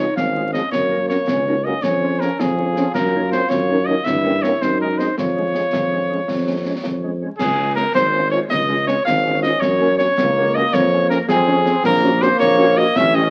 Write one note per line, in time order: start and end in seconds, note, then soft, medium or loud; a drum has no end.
0.00 0.14 D#4 medium
0.00 0.16 C#5 medium
0.16 0.59 G#1 medium
0.16 0.74 C#4 medium
0.16 0.51 F5 medium
0.16 concert bass drum medium
0.16 snare medium
0.35 0.43 G#3 soft
0.35 0.42 F4 soft
0.35 0.43 F4 soft
0.35 0.42 G#4 soft
0.35 0.43 G#4 soft
0.53 0.60 F3 medium
0.53 0.60 G#3 medium
0.53 0.62 G#3 soft
0.53 0.61 F4 soft
0.53 0.62 F4 soft
0.53 0.61 G#4 soft
0.53 0.62 G#4 medium
0.53 0.71 D#5 medium
0.53 snare soft
0.71 1.19 F#2 medium
0.71 1.28 A#3 medium
0.71 1.06 C#5 medium
0.71 concert bass drum medium
0.71 snare medium
0.90 0.99 A#3 medium
0.90 0.98 C#4 soft
0.90 0.97 F#4 medium
0.90 0.99 F#4 medium
0.90 0.97 A#4 soft
1.09 1.16 F#3 medium
1.09 1.16 A#3 medium
1.09 1.17 A#3 soft
1.09 1.17 C#4 medium
1.09 1.17 F#4 medium
1.09 1.17 F#4 soft
1.09 1.16 A#4 medium
1.09 1.66 C#5 medium
1.09 snare soft
1.28 1.75 C#2 medium
1.28 1.46 C#4 medium
1.28 concert bass drum medium
1.28 snare medium
1.47 1.54 A#3 medium
1.47 1.54 C#4 medium
1.47 1.55 D#4 medium
1.47 1.53 F#4 medium
1.47 1.54 F#4 medium
1.47 1.54 A#4 soft
1.64 1.71 F#3 medium
1.64 1.71 A#3 medium
1.64 1.72 A#3 medium
1.64 1.82 C#4 medium
1.64 1.73 C#4 medium
1.64 1.72 F#4 medium
1.64 1.73 F#4 medium
1.64 1.72 A#4 medium
1.64 1.84 D#5 medium
1.83 2.30 F2 medium
1.83 2.41 C#4 medium
1.83 2.22 C#5 medium
1.83 concert bass drum medium
1.83 snare medium
2.02 2.10 C#4 medium
2.02 2.09 F4 medium
2.02 2.10 G#4 medium
2.02 2.09 C#5 medium
2.20 2.28 F3 medium
2.20 2.27 C#4 medium
2.20 2.28 C#4 medium
2.20 2.27 F4 medium
2.20 2.28 G#4 medium
2.20 2.42 A#4 medium
2.20 2.28 C#5 medium
2.20 snare soft
2.39 2.86 F2 medium
2.39 4.06 F4 medium
2.39 2.94 G#4 medium
2.39 concert bass drum medium
2.39 snare medium
2.58 2.65 C#4 medium
2.58 2.65 F4 medium
2.58 2.65 G#4 medium
2.58 2.65 C#5 medium
2.76 2.85 F3 medium
2.76 2.84 C#4 medium
2.76 2.85 C#4 medium
2.76 2.83 F4 medium
2.76 2.84 G#4 medium
2.76 2.83 C#5 medium
2.76 snare medium
2.94 3.41 F#2 medium
2.94 3.29 A#4 medium
2.94 concert bass drum medium
2.94 snare medium
2.94 crash soft
3.13 3.21 A#3 medium
3.13 3.21 C#4 medium
3.13 3.20 D#4 medium
3.13 3.21 D#4 medium
3.13 3.21 C#5 medium
3.31 3.39 D#3 medium
3.31 3.39 A#3 medium
3.31 3.39 C#4 medium
3.31 3.38 D#4 medium
3.31 3.39 D#4 medium
3.31 3.51 C5 medium
3.31 3.38 C#5 medium
3.31 snare medium
3.49 3.97 F#2 medium
3.49 3.87 C#5 loud
3.49 concert bass drum medium
3.49 snare medium
3.69 3.77 A#3 medium
3.69 3.77 C#4 medium
3.69 3.75 D#4 medium
3.69 3.78 D#4 medium
3.69 3.75 C#5 medium
3.85 3.94 D#3 medium
3.85 3.95 A#3 medium
3.85 3.94 C#4 medium
3.85 3.95 C#4 medium
3.85 3.94 D#4 medium
3.85 3.95 D#4 medium
3.85 3.94 C#5 medium
3.85 4.06 D#5 medium
4.04 4.53 G2 medium
4.04 4.64 E4 medium
4.04 4.44 E5 loud
4.04 concert bass drum medium
4.04 snare medium
4.23 4.32 A#3 medium
4.23 4.32 C#4 medium
4.23 4.32 G4 medium
4.23 4.30 A#4 medium
4.23 4.30 C#5 medium
4.42 4.50 A#3 medium
4.42 4.51 A#3 medium
4.42 4.50 C#4 medium
4.42 4.51 C#4 medium
4.42 4.51 G4 medium
4.42 4.49 A#4 medium
4.42 4.49 C#5 medium
4.42 4.63 C#5 medium
4.42 snare medium
4.61 5.08 F#2 medium
4.61 5.16 D#4 medium
4.61 4.80 C5 medium
4.61 concert bass drum medium
4.61 snare medium
4.80 4.88 G#3 medium
4.80 4.88 D#4 medium
4.80 4.87 G#4 soft
4.80 4.88 G#4 medium
4.80 5.00 A#4 medium
4.80 4.87 D#5 medium
4.98 5.06 G#3 medium
4.98 5.07 G#3 soft
4.98 5.06 D#4 medium
4.98 5.08 D#4 medium
4.98 5.05 G#4 soft
4.98 5.07 G#4 soft
4.98 5.17 C5 medium
4.98 5.05 D#5 medium
4.98 snare soft
5.17 5.64 F2 medium
5.17 7.08 F4 medium
5.17 7.18 C#5 medium
5.17 concert bass drum medium
5.17 snare medium
5.35 5.44 G#3 soft
5.35 5.44 C#4 soft
5.35 5.42 G#4 soft
5.35 5.44 G#4 soft
5.35 5.42 C#5 soft
5.53 5.61 G#3 medium
5.53 5.62 G#3 soft
5.53 5.61 C#4 soft
5.53 5.62 C#4 soft
5.53 5.60 G#4 soft
5.53 5.62 G#4 soft
5.53 5.60 C#5 soft
5.53 snare soft
5.73 6.20 F2 medium
5.73 concert bass drum medium
5.73 snare medium
5.89 5.99 G#3 soft
5.89 5.99 C#4 soft
5.89 5.97 G#4 soft
5.89 5.99 G#4 soft
5.89 5.97 C#5 soft
6.08 6.17 G#3 soft
6.08 6.18 G#3 soft
6.08 6.17 C#4 soft
6.08 6.16 G#4 soft
6.08 6.18 G#4 soft
6.08 6.16 C#5 soft
6.28 6.75 F2 medium
6.28 concert bass drum medium
6.28 snare medium
6.46 6.55 G#3 soft
6.46 6.55 C#4 soft
6.46 6.53 G#4 soft
6.46 6.55 G#4 soft
6.46 6.53 C#5 soft
6.64 6.72 G#3 soft
6.64 6.72 C#4 soft
6.64 6.73 C#4 soft
6.64 6.71 G#4 soft
6.64 6.73 G#4 soft
6.64 6.71 C#5 soft
6.84 7.26 F2 medium
6.84 concert bass drum medium
6.84 snare medium
7.02 7.10 G#3 soft
7.02 7.10 C#4 soft
7.02 7.09 G#4 soft
7.02 7.10 G#4 soft
7.02 7.09 C#5 soft
7.21 7.29 G#3 soft
7.21 7.29 C#4 soft
7.21 7.28 G#4 soft
7.21 7.29 G#4 soft
7.21 7.27 C#5 soft
7.38 7.86 C#2 medium
7.38 7.73 G#4 medium
7.38 7.75 G#4 medium
7.38 concert bass drum medium
7.38 snare medium
7.38 crash soft
7.59 7.66 G#3 medium
7.59 7.66 C#4 medium
7.59 7.65 F4 medium
7.75 7.84 G#3 medium
7.75 7.84 C#4 medium
7.75 7.84 F4 medium
7.75 7.94 A#4 medium
7.75 snare soft
7.95 8.41 G#1 medium
7.95 9.02 G#3 medium
7.95 8.30 C5 medium
7.95 concert bass drum medium
7.95 snare medium
8.13 8.21 G#3 medium
8.13 8.20 C#4 medium
8.13 8.20 F4 medium
8.31 8.39 G#3 medium
8.31 8.39 C#4 medium
8.31 8.39 F4 medium
8.31 8.40 C#5 medium
8.31 8.41 C#5 medium
8.50 8.97 C#2 medium
8.50 8.85 D#5 loud
8.50 8.85 D#5 medium
8.50 concert bass drum medium
8.50 snare medium
8.68 8.76 G#3 medium
8.68 8.76 C#4 medium
8.68 8.75 F4 medium
8.87 8.94 G#3 medium
8.87 8.94 C#4 medium
8.87 8.94 F4 medium
8.87 9.04 C#5 medium
8.87 9.07 C#5 medium
8.87 snare medium
9.05 9.53 G#1 medium
9.05 10.14 C#4 medium
9.05 9.40 F5 loud
9.05 9.44 F5 medium
9.05 concert bass drum medium
9.05 snare medium
9.25 9.31 G#3 medium
9.25 9.31 C#4 medium
9.25 9.31 F4 medium
9.43 9.50 G#3 medium
9.43 9.50 C#4 medium
9.43 9.50 F4 medium
9.43 9.62 D#5 medium
9.43 9.61 D#5 medium
9.43 snare medium
9.60 10.09 F#2 medium
9.60 9.98 C#5 loud
9.60 9.97 C#5 medium
9.60 concert bass drum medium
9.60 snare medium
9.80 9.87 A#3 medium
9.80 9.87 C#4 medium
9.80 9.87 F#4 medium
9.98 10.06 A#3 medium
9.98 10.06 C#4 medium
9.98 10.06 F#4 medium
9.98 10.50 C#5 medium
9.98 10.56 C#5 loud
9.98 snare medium
10.17 10.64 C#2 medium
10.17 11.25 A#3 medium
10.17 concert bass drum medium
10.17 snare medium
10.37 10.44 A#3 medium
10.37 10.44 C#4 medium
10.37 10.44 F#4 medium
10.54 10.62 A#3 medium
10.54 10.63 C#4 medium
10.54 10.63 F#4 medium
10.54 10.72 D#5 medium
10.54 10.75 D#5 loud
10.73 11.20 F2 medium
10.73 11.09 C#5 loud
10.73 11.11 C#5 medium
10.73 concert bass drum medium
10.73 snare medium
10.93 11.00 C#4 medium
10.93 11.00 G#4 medium
11.10 11.18 C#4 medium
11.10 11.17 G#4 medium
11.10 11.18 A#4 loud
11.10 11.28 A#4 loud
11.10 snare medium
11.28 11.75 F2 medium
11.28 11.46 C4 medium
11.28 11.80 G#4 medium
11.28 11.81 G#4 medium
11.28 concert bass drum medium
11.28 snare medium
11.48 11.55 C#4 medium
11.48 11.56 C#4 medium
11.48 11.55 G#4 medium
11.66 11.83 C4 medium
11.66 11.73 C#4 medium
11.66 11.73 G#4 medium
11.66 snare medium
11.84 12.31 A#1 loud
11.84 12.96 A#3 loud
11.84 12.19 A#4 loud
11.84 12.24 A#4 loud
11.84 concert bass drum medium
11.84 snare medium
11.84 crash soft
12.03 12.10 A#3 medium
12.03 12.10 C#4 medium
12.03 12.10 F#4 medium
12.21 12.28 A#3 medium
12.21 12.28 C#4 medium
12.21 12.28 F#4 medium
12.21 12.30 C5 loud
12.21 12.39 C5 loud
12.21 snare medium
12.40 12.86 A#1 loud
12.40 12.79 C#5 loud
12.40 12.75 C#5 loud
12.40 concert bass drum medium
12.40 snare medium
12.58 12.65 A#3 medium
12.58 12.65 C#4 medium
12.58 12.65 F#4 medium
12.77 12.84 A#3 medium
12.77 12.84 C#4 medium
12.77 12.84 F#4 medium
12.77 12.98 D#5 loud
12.77 12.86 D#5 loud
12.96 13.30 A1 loud
12.96 13.30 C#4 loud
12.96 13.04 E5 loud
12.96 13.17 E5 loud
12.96 concert bass drum medium
12.96 snare medium
13.14 13.21 G3 medium
13.14 13.21 C#4 medium
13.14 13.21 G4 medium
13.14 13.30 D#5 loud
13.14 13.23 D#5 loud